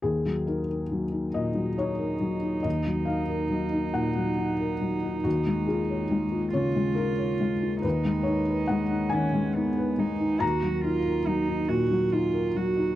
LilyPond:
<<
  \new Staff \with { instrumentName = "Cello" } { \time 6/8 \key ees \minor \tempo 4. = 46 r4. ees'4.~ | ees'2.~ | ees'4. f'4. | ees'4. des'8 ces'8 ees'8 |
ges'8 f'8 ees'8 ges'8 f'8 ges'8 | }
  \new Staff \with { instrumentName = "Felt piano" } { \time 6/8 \key ees \minor aes'8 bes'4 ees''8 des''4 | ees''8 f''4 ges''4. | ges'8 aes'4 des''8 bes'4 | ces''8 des''8 ges''8 aes''4. |
bes''2. | }
  \new Staff \with { instrumentName = "Felt piano" } { \time 6/8 \key ees \minor ees,16 ges16 ees'16 bes'16 ges16 ees'16 bes,16 ges16 ees'16 bes'16 ges16 ees'16 | ees,16 ges16 ees'16 bes'16 ges16 ees'16 bes,16 ges16 ees'16 bes'16 ges16 ees'16 | ees,16 aes16 f'16 des''16 aes16 f'16 des16 aes16 f'16 des''16 aes16 f'16 | ees,16 aes16 ees'16 ces''16 aes16 ees'16 ees16 aes16 ees'16 ces''16 aes16 ees'16 |
ees,16 ges16 ees'16 bes'16 ges16 ees'16 bes,16 ges16 ees'16 bes'16 ges16 ees'16 | }
>>